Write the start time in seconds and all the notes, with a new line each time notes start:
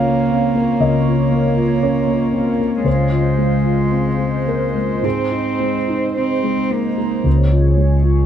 Already playing: C#2 A#3 C#4 F4 C#5 F5
0.06 A#3
0.31 C4
0.55 A#3
0.81 C#2 D#5
1.06 F4
1.31 A#3
1.57 F4
1.82 C#4 C#5
2.07 A#3
2.33 C4
2.59 A#3
2.85 C#2 G#3 C5
3.11 F4
3.38 G#3
3.64 F4
3.91 C4
4.18 G#3
4.47 A#3 A#4
4.75 G#3
5.03 G#2 C4 D#4 G#4
5.31 D#4
5.59 G#3
5.88 D#4
6.16 C4
6.43 G#3
6.70 A#3
6.98 G#3
7.24 C#2 G#3 G#4 C#5
7.51 F4
7.77 G#3
8.02 F4